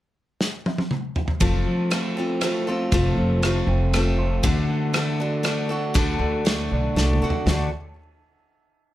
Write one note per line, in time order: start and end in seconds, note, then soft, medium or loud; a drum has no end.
0.41 snare medium
0.66 high tom medium
0.78 high tom medium
0.91 mid tom medium
1.16 floor tom medium
1.28 floor tom medium
1.40 1.63 F1 medium
1.40 1.91 F3 medium
1.40 1.90 A3 medium
1.40 1.90 C4 medium
1.40 1.91 F4 medium
1.40 1.93 A4 medium
1.40 kick loud
1.40 ride medium
1.68 2.91 F3 medium
1.90 2.16 A3 soft
1.90 2.17 C4 soft
1.90 2.17 F4 medium
1.90 2.16 A4 medium
1.90 cross-stick medium
1.90 ride medium
2.17 2.42 C4 soft
2.17 2.43 F4 soft
2.17 2.42 A4 soft
2.41 2.67 A3 medium
2.41 2.68 C4 medium
2.41 2.67 F4 medium
2.41 2.66 A4 medium
2.41 cross-stick medium
2.41 ride medium
2.67 2.92 C4 soft
2.67 2.93 F4 soft
2.67 2.92 A4 soft
2.92 3.15 F1 medium
2.92 3.43 F3 medium
2.92 3.42 A3 medium
2.92 3.43 C4 medium
2.92 3.44 F4 medium
2.92 3.45 A4 medium
2.92 kick loud
2.92 ride medium
3.17 3.64 F1 medium
3.17 4.44 F3 medium
3.42 3.93 A3 medium
3.42 3.93 C4 medium
3.42 3.94 F4 medium
3.42 3.96 A4 medium
3.42 cross-stick medium
3.42 ride medium
3.67 4.39 F1 medium
3.67 4.44 C4 medium
3.93 4.43 A3 medium
3.93 4.43 C4 medium
3.93 4.44 F4 medium
3.93 4.45 A4 medium
3.93 cross-stick medium
3.93 ride soft
4.18 4.44 F4 medium
4.43 4.67 D2 medium
4.43 5.94 D3 medium
4.43 4.93 A3 medium
4.43 4.94 D4 medium
4.43 4.95 F#4 medium
4.43 4.96 A4 medium
4.43 kick loud
4.43 ride medium
4.69 5.96 D3 medium
4.93 5.19 A3 medium
4.93 5.19 D4 medium
4.93 5.20 F#4 medium
4.93 5.19 A4 medium
4.93 cross-stick medium
4.93 ride medium
5.20 5.43 D4 soft
5.20 5.44 F#4 soft
5.20 5.45 A4 medium
5.43 5.69 A3 medium
5.43 5.70 D4 medium
5.43 5.69 F#4 medium
5.43 5.68 A4 medium
5.43 cross-stick medium
5.43 ride soft
5.69 5.94 D4 soft
5.69 5.94 F#4 soft
5.69 5.94 A4 soft
5.94 6.18 D2 loud
5.94 6.46 D3 medium
5.94 6.44 A3 medium
5.94 6.45 D4 medium
5.94 6.45 F#4 medium
5.94 6.46 A4 medium
5.94 kick loud
5.94 ride medium
6.19 6.67 D2 medium
6.19 7.47 D3 medium
6.45 6.95 A3 medium
6.45 6.96 D4 medium
6.45 6.97 F#4 medium
6.45 6.98 A4 medium
6.45 snare medium
6.45 ride medium
6.71 6.94 B1 medium
6.71 7.48 D4 medium
6.95 7.19 C2 medium
6.95 7.22 A3 medium
6.95 7.22 D4 medium
6.95 7.23 F#4 medium
6.95 7.21 A4 medium
6.95 snare medium
7.13 mid tom medium
7.21 7.44 D2 medium
7.21 7.47 D4 soft
7.21 7.48 F#4 soft
7.21 7.47 A4 soft
7.30 floor tom medium
7.46 7.70 D2 medium
7.46 7.68 D3 medium
7.46 7.69 A3 medium
7.46 7.68 D4 medium
7.46 snare medium
7.46 floor tom medium
7.50 7.69 F#4 medium
7.50 7.69 A4 medium